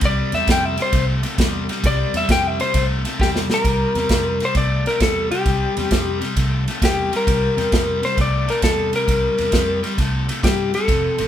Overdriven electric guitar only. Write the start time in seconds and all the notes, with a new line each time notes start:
0.02 C3 G3
0.33 C3 G3
0.47 C3 G3
0.78 C3 G3
0.92 C3 A3
1.23 C3 A3
1.38 C3 G3
1.69 C3 G3
1.85 C3 G3
2.14 C3 G3
2.29 C3 G3
2.59 C3 G3
2.74 C3 A3
3.04 C3 A3
3.19 C3 G3
3.50 C3 G3
3.65 C3 G3
3.96 C3 G3
4.11 C3 G3
4.42 C3 G3
4.55 C3 A3
4.86 C3 A3
5.01 C3 G3
5.31 C3 G3
5.47 C3 G3
5.77 C3 G3
5.90 C3 G3
6.21 C3 G3
6.36 C3 A3
6.68 C3 A3
6.81 C3 G3
7.12 C3 G3
7.26 C3 G3
7.57 C3 G3
7.72 C3 G3
8.02 C3 G3
8.16 C3 A3
8.47 C3 A3
8.62 C3 G3
8.93 C3 G3
9.07 C3 G3
9.37 C3 G3
9.51 C3 G3
9.83 C3 G3
9.98 C3 A3
10.28 C3 A3
10.43 C3 G3
10.74 C3 G3
10.88 F2 C3
11.18 F2 C3